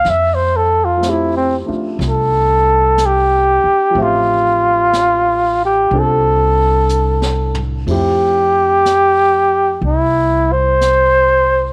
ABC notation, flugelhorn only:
X:1
M:4/4
L:1/16
Q:"Swing" 1/4=61
K:F
V:1 name="Flugelhorn"
e c A F E C z2 A4 G4 | F6 G2 A6 z2 | G8 E2 c6 |]